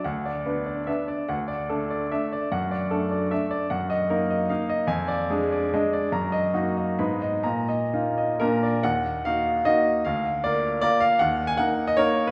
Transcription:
<<
  \new Staff \with { instrumentName = "Grand piano" } { \time 3/4 \key d \major \tempo 4 = 149 << { r2. | r2. | r2. | \key ees \minor r2. |
r2. | r2. | r2 bes'4 | ges''4 f''4 ees''4 |
f''4 d''4 d''8 f''8 | ges''8. aes''16 ges''8. ees''16 des''8. ces''16 | } \\ { fis''8 d''8 b'8 d''8 e''8 d''8 | fis''8 d''8 a'8 d''8 e''8 d''8 | fis''8 d''8 a'8 d''8 e''8 d''8 | ges''8 ees''8 bes'8 ees''8 f''8 ees''8 |
aes''8 d''8 aes'8 d''8 ees''8 d''8 | bes''8 ees''8 ges'8 ees''8 ces'''8 ees''8 | bes''8 ees''8 f'8 ees''8 bes''8 d''8 | r2. |
r2. | r2. | } >> }
  \new Staff \with { instrumentName = "Grand piano" } { \time 3/4 \key d \major d,4 <b d'>4 <b d'>4 | d,4 <a d'>4 <a d'>4 | fis,4 <a d'>4 <a d'>4 | \key ees \minor ges,4 <bes ees'>4 <bes ees'>4 |
f,4 <aes d'>4 <aes d'>4 | ges,4 <bes ees'>4 <aes, ces' ees'>4 | bes,4 <bes ees'>4 <bes, bes d'>4 | ees,4 <bes ees' ges'>4 <bes ees' ges'>4 |
d,4 <bes f' bes'>4 <bes f' bes'>4 | ees,4 <bes ees' bes'>4 <bes ees' bes'>4 | }
>>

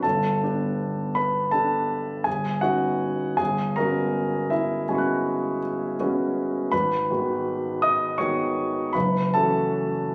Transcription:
<<
  \new Staff \with { instrumentName = "Grand piano" } { \time 9/8 \key fis \major \tempo 4. = 54 << { r1 r8 | r2 <gis'' b'' cis''' fis'''>2~ <gis'' b'' cis''' fis'''>8 | r1 r8 | } \\ { <a' a''>4. <b' b''>8 <a' a''>4 <gis' gis''>8 <fis' fis''>4 | <gis' gis''>8 <ais' ais''>4 <e' e''>4. r4. | <b' b''>4. <dis'' dis'''>8 <cis'' cis'''>4 <b' b''>8 <a' a''>4 | } >> }
  \new Staff \with { instrumentName = "Grand piano" } { \time 9/8 \key fis \major g,,8 <b d' g'>4. <b d' g'>4 g,,8 <b cis' dis'>4 | g,,8 <gis b cis' fis'>4. <gis b cis' fis'>4. <gis b cis' fis'>4 | gis,,8 <dis gis b fis'>4. <dis gis b fis'>4 fis,,8 <e a cis' fis'>4 | }
>>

